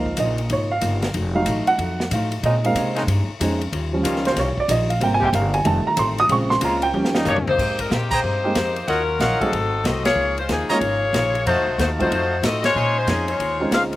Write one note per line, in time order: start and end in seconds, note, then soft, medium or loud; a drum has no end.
0.00 0.17 C#2 medium
0.00 1.10 F3 medium
0.00 1.11 A#3 soft
0.00 1.11 D#4 medium
0.00 0.15 F5 loud
0.06 kick medium
0.17 0.49 A#1 loud
0.17 0.39 C#3 medium
0.17 0.40 A#3 medium
0.17 0.40 D#4 medium
0.17 0.40 F4 medium
0.17 0.49 D#5 medium
0.17 hi-hat pedal medium
0.17 ride medium
0.38 ride medium
0.49 0.81 G#1 medium
0.49 0.71 C#3 medium
0.49 0.72 A#3 medium
0.49 0.72 D#4 medium
0.49 0.72 F4 medium
0.49 0.71 C#5 medium
0.49 ride medium
0.71 1.12 F5 medium
0.81 1.13 G1 loud
0.81 1.03 C#3 medium
0.81 1.04 A#3 medium
0.81 1.04 D#4 medium
0.81 1.04 F4 medium
0.81 hi-hat pedal medium
0.81 ride medium
1.02 snare medium
1.02 ride medium
1.14 1.46 F1 loud
1.14 1.36 F3 medium
1.14 1.36 A3 medium
1.14 1.37 D#4 medium
1.14 1.37 F#4 medium
1.14 ride medium
1.34 2.39 F#3 medium
1.34 2.39 A3 soft
1.34 2.40 D#4 medium
1.34 1.65 F5 medium
1.46 1.66 A1 loud
1.46 1.69 F3 medium
1.46 1.69 A3 medium
1.46 1.69 D#4 medium
1.46 1.70 F#4 medium
1.46 hi-hat pedal medium
1.46 ride medium
1.67 2.08 F#5 loud
1.67 muted upright bass stroke soft
1.67 ride medium
1.78 2.10 F2 medium
1.78 2.01 F3 soft
1.78 2.01 A3 soft
1.78 2.02 D#4 medium
1.78 2.02 F#4 medium
1.78 ride medium
2.00 snare medium
2.11 2.42 A2 loud
2.11 2.34 F3 medium
2.11 2.34 A3 medium
2.11 2.34 D#4 medium
2.11 2.35 F#4 medium
2.11 2.42 F5 medium
2.11 hi-hat pedal medium
2.11 ride medium
2.32 ride medium
2.43 2.75 A#2 loud
2.43 2.66 A#2 soft
2.43 2.58 C#3 loud
2.43 2.57 G#3 medium
2.43 2.66 G#3 medium
2.43 2.58 C4 medium
2.43 2.66 C#4 medium
2.43 2.58 D#4 loud
2.43 2.67 D#4 medium
2.43 2.65 D#5 medium
2.43 ride medium
2.64 3.06 G#3 medium
2.64 3.07 A#3 soft
2.64 3.06 C4 medium
2.64 3.07 D#4 medium
2.64 3.06 F5 medium
2.64 ride medium
2.75 2.98 A#2 medium
2.75 3.07 C3 medium
2.75 2.98 G#3 medium
2.75 2.99 C#4 medium
2.75 2.99 D#4 medium
2.75 hi-hat pedal medium
2.75 ride medium
2.95 3.04 C#3 loud
2.95 3.04 G#3 medium
2.95 3.04 C4 loud
2.95 3.04 D#4 loud
2.95 snare soft
2.95 ride medium
3.07 3.27 G2 loud
3.07 3.30 A#2 medium
3.07 3.30 G#3 medium
3.07 3.31 C#4 medium
3.07 3.31 D#4 medium
3.07 ride medium
3.28 muted upright bass stroke soft
3.40 3.72 F2 loud
3.40 3.62 A#2 medium
3.40 3.59 G#3 soft
3.40 3.62 G#3 medium
3.40 3.59 C4 soft
3.40 3.59 C#4 soft
3.40 3.63 C#4 medium
3.40 3.59 D#4 medium
3.40 3.63 D#4 medium
3.40 hi-hat pedal medium
3.40 ride medium
3.61 ride medium
3.72 4.03 D#2 loud
3.72 3.94 D#3 medium
3.72 3.95 G3 medium
3.72 3.95 C#4 medium
3.72 3.95 F4 medium
3.72 ride medium
3.93 4.35 F3 medium
3.93 4.35 G3 soft
3.93 4.35 C#4 medium
4.03 4.35 C#2 loud
4.03 4.53 D#3 loud
4.03 4.27 D#3 medium
4.03 4.53 G3 medium
4.03 4.27 G3 medium
4.03 4.53 C#4 loud
4.03 4.27 C#4 medium
4.03 4.53 F4 loud
4.03 4.27 F4 medium
4.03 hi-hat pedal medium
4.03 ride medium
4.16 snare soft
4.25 4.37 C5 medium
4.25 snare medium
4.25 ride medium
4.36 4.56 C2 loud
4.36 4.59 D#3 soft
4.36 4.59 G3 medium
4.36 4.59 C#4 medium
4.36 4.60 F4 medium
4.36 4.58 C#5 medium
4.36 snare soft
4.36 ride medium
4.57 4.70 D5 medium
4.57 muted upright bass stroke soft
4.57 kick medium
4.68 5.00 A#1 loud
4.68 4.91 D#3 medium
4.68 4.91 G3 medium
4.68 4.91 C#4 medium
4.68 4.92 F4 medium
4.68 4.90 D#5 medium
4.68 hi-hat pedal medium
4.68 ride medium
4.90 5.01 F5 medium
4.90 ride medium
5.00 5.32 G#1 loud
5.00 5.51 C3 medium
5.00 5.52 G3 soft
5.00 5.23 G#3 soft
5.00 5.52 A#3 medium
5.00 5.23 C4 soft
5.00 5.24 G4 soft
5.00 5.24 A#4 medium
5.00 5.13 G5 medium
5.00 ride medium
5.14 5.24 G#5 loud
5.20 5.29 C3 loud
5.20 5.29 G#3 loud
5.20 5.29 A#3 loud
5.20 5.29 G4 loud
5.20 kick medium
5.25 5.35 G5 medium
5.33 5.64 G1 loud
5.33 5.55 G#3 medium
5.33 5.55 C4 medium
5.33 5.56 G4 medium
5.33 5.56 A#4 medium
5.33 5.54 F5 medium
5.33 hi-hat pedal medium
5.33 ride medium
5.54 5.65 G#5 medium
5.54 ride medium
5.64 5.85 F1 loud
5.64 6.27 D#3 medium
5.64 5.87 F3 medium
5.64 6.27 G3 soft
5.64 6.27 A3 medium
5.64 5.88 C4 medium
5.64 5.88 D#4 medium
5.64 5.89 A4 medium
5.64 5.86 A5 medium
5.64 ride medium
5.86 5.98 A#5 medium
5.86 muted upright bass stroke soft
5.96 6.29 A1 loud
5.96 6.19 F3 medium
5.96 6.19 C4 medium
5.96 6.20 D#4 medium
5.96 6.20 A4 medium
5.96 6.19 C6 medium
5.96 hi-hat pedal medium
5.96 ride medium
6.18 6.31 D#6 loud
6.18 ride medium
6.29 6.61 A#1 loud
6.29 6.52 A#2 soft
6.29 6.91 C#3 medium
6.29 6.52 G#3 medium
6.29 6.92 G#3 soft
6.29 6.92 C4 medium
6.29 6.52 C#4 soft
6.29 6.53 F4 medium
6.29 6.51 C#6 medium
6.29 ride medium
6.50 6.62 C6 medium
6.50 snare medium
6.61 6.93 C#2 loud
6.61 6.83 A#2 medium
6.61 6.95 C#3 medium
6.61 6.84 G#3 medium
6.61 6.95 G#3 medium
6.61 6.95 A#3 medium
6.61 6.84 C#4 medium
6.61 6.84 F4 medium
6.61 6.95 F4 loud
6.61 6.84 A#5 medium
6.61 hi-hat pedal medium
6.61 ride medium
6.82 7.24 G5 loud
6.82 ride medium
6.92 7.25 D#2 loud
6.92 7.15 D#3 soft
6.92 7.18 F3 medium
6.92 7.19 G3 medium
6.92 7.16 A#3 medium
6.92 7.16 C#4 medium
6.92 7.19 C#4 medium
6.92 7.17 G4 medium
7.05 snare medium
7.13 7.56 C#3 loud
7.13 7.56 G3 medium
7.13 7.56 A#3 medium
7.13 7.57 D#4 loud
7.13 snare medium
7.24 7.58 G2 loud
7.24 7.47 D#3 medium
7.24 7.48 A#3 medium
7.24 7.48 C#4 medium
7.24 7.48 G4 medium
7.24 floor tom medium
7.24 hi-hat pedal medium
7.28 7.37 A#3 medium
7.28 7.37 D#4 medium
7.28 7.37 G4 medium
7.28 7.37 C#5 medium
7.36 floor tom medium
7.47 7.79 A#3 medium
7.47 7.78 D#4 medium
7.47 7.78 G4 medium
7.47 7.78 C5 loud
7.47 floor tom loud
7.57 7.90 G#2 medium
7.57 7.80 G#3 soft
7.57 7.81 C4 soft
7.57 7.81 G4 soft
7.57 7.82 A#4 soft
7.57 kick medium
7.57 crash medium
7.79 7.92 G3 medium
7.79 7.92 C4 medium
7.79 7.92 D#4 medium
7.79 7.92 A#4 medium
7.79 kick medium
7.79 ride medium
7.89 8.23 A#2 medium
7.89 8.11 D#3 medium
7.89 8.12 G#3 medium
7.89 8.12 A#3 medium
7.89 8.13 C4 medium
7.89 8.13 G4 medium
7.89 8.12 G4 medium
7.89 8.13 A#4 medium
7.89 snare medium
7.89 hi-hat pedal medium
7.94 8.12 C4 medium
8.11 8.89 A#3 medium
8.11 8.89 D#4 medium
8.11 8.89 G4 medium
8.11 8.20 G#4 medium
8.11 8.20 C5 medium
8.11 8.89 C5 loud
8.11 8.20 G5 medium
8.11 8.20 A#5 loud
8.11 kick medium
8.11 crash medium
8.23 8.55 G2 medium
8.23 8.45 G#3 soft
8.23 8.46 C4 soft
8.23 8.46 G4 soft
8.23 8.46 A#4 soft
8.44 8.55 G#3 medium
8.44 8.55 A#3 medium
8.44 8.55 C4 medium
8.44 8.55 D#4 medium
8.44 8.55 G4 medium
8.55 8.87 F2 medium
8.55 8.77 G#3 medium
8.55 8.78 C4 medium
8.55 8.78 G4 medium
8.55 8.78 A#4 medium
8.55 snare medium
8.55 hi-hat pedal medium
8.55 ride medium
8.76 ride medium
8.87 9.19 D#2 medium
8.87 9.10 D#3 medium
8.87 9.38 F#3 medium
8.87 9.10 F#3 soft
8.87 9.38 C#4 medium
8.87 9.11 C#4 soft
8.87 9.02 F4 medium
8.87 9.38 F4 medium
8.87 9.11 F4 medium
8.87 9.38 A#4 loud
8.87 9.02 C#5 medium
8.87 9.02 D#5 medium
8.87 9.02 F#5 medium
8.87 ride medium
9.20 9.39 A#1 loud
9.20 9.42 D#3 medium
9.20 9.42 F#3 medium
9.20 9.43 C#4 medium
9.20 9.43 F4 medium
9.20 9.53 C#5 medium
9.20 9.53 D#5 medium
9.20 9.53 F5 medium
9.20 9.53 F#5 loud
9.20 snare medium
9.20 hi-hat pedal medium
9.20 ride medium
9.41 9.85 F#3 medium
9.41 9.52 F#3 medium
9.41 9.52 A3 medium
9.41 9.85 C4 medium
9.41 9.52 C4 medium
9.41 9.85 D#4 medium
9.41 9.52 D#4 medium
9.41 9.53 G#4 medium
9.41 9.85 A4 loud
9.41 muted upright bass stroke soft
9.41 kick medium
9.41 ride soft
9.52 9.83 G#1 medium
9.52 9.75 G#2 medium
9.52 9.75 F#3 medium
9.52 9.76 A3 medium
9.52 9.76 C4 medium
9.52 ride medium
9.84 10.15 C2 loud
9.84 10.07 G#2 medium
9.84 10.07 F#3 medium
9.84 10.08 A3 medium
9.84 10.06 C4 medium
9.84 10.08 C4 medium
9.84 10.06 F#4 medium
9.84 10.06 A4 medium
9.84 10.06 D#5 medium
9.84 snare medium
9.84 hi-hat pedal medium
9.84 ride medium
10.05 10.36 A#3 medium
10.05 10.36 F4 medium
10.05 10.36 G#4 medium
10.05 10.36 C#5 loud
10.05 snare medium
10.05 ride medium
10.16 10.48 C#2 medium
10.16 10.39 C#3 soft
10.16 10.39 F3 medium
10.16 10.40 A#3 medium
10.16 10.40 D#4 soft
10.38 10.50 G#3 medium
10.38 10.50 C#4 medium
10.38 10.49 F4 medium
10.38 10.49 C5 medium
10.38 ride soft
10.49 10.69 D#2 medium
10.49 10.71 C#3 medium
10.49 10.71 F3 medium
10.49 10.70 F3 medium
10.49 10.72 A#3 medium
10.49 10.70 A#3 medium
10.49 10.72 D#4 medium
10.49 10.70 D#4 medium
10.49 10.70 G#4 medium
10.49 snare medium
10.49 hi-hat pedal medium
10.49 ride medium
10.69 10.81 G#3 medium
10.69 10.81 A#3 medium
10.69 11.47 A#3 medium
10.69 10.81 C#4 medium
10.69 10.81 D#4 medium
10.69 10.77 F4 medium
10.69 10.81 F4 medium
10.69 11.48 G#4 medium
10.69 10.77 C#5 medium
10.69 11.47 C#5 loud
10.69 10.77 D#5 medium
10.69 10.78 A#5 loud
10.69 muted upright bass stroke soft
10.69 snare soft
10.69 ride medium
10.73 11.48 F4 medium
10.81 11.12 G#1 medium
10.81 11.03 C#3 soft
10.81 11.04 F3 medium
10.81 11.05 A#3 soft
10.81 11.05 D#4 medium
10.81 ride medium
11.13 11.45 A#1 loud
11.13 11.36 C#3 medium
11.13 11.36 F3 medium
11.13 11.37 A#3 medium
11.13 11.37 D#4 medium
11.13 snare medium
11.13 hi-hat pedal medium
11.13 ride medium
11.35 ride soft
11.46 11.57 F2 medium
11.46 11.68 F3 soft
11.46 11.76 A3 medium
11.46 11.69 A3 soft
11.46 11.77 D#4 medium
11.46 11.69 D#4 medium
11.46 12.36 F#4 medium
11.46 11.77 F#4 medium
11.46 11.70 F#4 medium
11.46 11.76 C5 loud
11.46 12.36 D#5 medium
11.46 12.36 F5 medium
11.46 12.36 A5 loud
11.46 ride medium
11.57 11.67 D#2 medium
11.67 11.78 C2 medium
11.78 12.10 D#2 loud
11.78 12.00 F3 medium
11.78 12.01 A3 medium
11.78 11.90 A3 medium
11.78 12.01 D#4 medium
11.78 11.90 D#4 medium
11.78 12.01 F#4 medium
11.78 11.90 F#4 medium
11.78 11.89 C5 medium
11.78 snare medium
11.78 hi-hat pedal medium
11.78 ride medium
11.99 12.10 F#3 medium
11.99 12.10 A3 medium
11.99 12.41 A3 medium
11.99 12.10 C4 medium
11.99 12.10 D#4 medium
11.99 12.41 D#4 medium
11.99 12.10 F4 medium
11.99 12.41 F#4 medium
11.99 12.41 C5 medium
11.99 kick medium
11.99 ride medium
12.10 12.42 F2 medium
12.10 12.32 F3 soft
12.10 12.33 A3 soft
12.10 12.33 D#4 medium
12.10 12.33 F#4 medium
12.10 ride medium
12.42 12.74 A2 medium
12.42 12.64 F3 medium
12.42 12.65 A3 medium
12.42 12.65 C4 medium
12.42 12.65 D#4 medium
12.42 12.65 F#4 medium
12.42 12.65 A4 medium
12.42 12.65 D#5 loud
12.42 snare medium
12.42 hi-hat pedal medium
12.42 ride medium
12.64 12.95 G#3 medium
12.64 12.95 F4 medium
12.64 12.95 C5 medium
12.64 12.95 C#5 loud
12.64 snare medium
12.64 ride medium
12.75 12.97 A#2 soft
12.75 13.06 A#2 medium
12.75 12.97 G#3 medium
12.75 13.65 C#4 medium
12.75 12.98 C#4 soft
12.75 13.65 D#4 medium
12.75 12.98 D#4 soft
12.75 13.65 G#5 loud
12.75 13.65 C6 medium
12.98 13.09 G#3 medium
12.98 13.08 C#4 medium
12.98 13.09 F4 medium
12.98 13.09 C5 medium
13.07 13.38 F2 medium
13.07 13.29 A#2 medium
13.07 13.28 F3 medium
13.07 13.30 G#3 medium
13.07 13.28 C4 medium
13.07 13.30 C#4 medium
13.07 13.28 C#4 medium
13.07 13.30 D#4 medium
13.07 13.28 G#4 medium
13.07 snare medium
13.07 hi-hat pedal medium
13.07 ride medium
13.28 13.73 G#3 medium
13.28 13.73 F4 medium
13.28 13.73 C5 medium
13.28 13.73 C#5 loud
13.28 ride medium
13.38 13.71 D#2 medium
13.38 13.61 A#2 soft
13.38 13.62 G#3 soft
13.38 13.62 C#4 medium
13.38 13.62 D#4 medium
13.38 ride medium
13.60 13.96 G#3 medium
13.60 13.96 C4 medium
13.60 13.96 C#4 medium
13.60 13.96 D#4 medium
13.60 13.96 F4 medium
13.71 13.96 D2 medium
13.71 13.93 A#2 medium
13.71 13.93 G#3 medium
13.71 13.94 C#4 medium
13.71 13.83 C#4 medium
13.71 13.94 D#4 medium
13.71 13.83 G#4 medium
13.71 13.83 C5 medium
13.71 13.83 F5 loud
13.71 snare medium
13.71 hi-hat pedal medium
13.71 ride medium
13.93 ride soft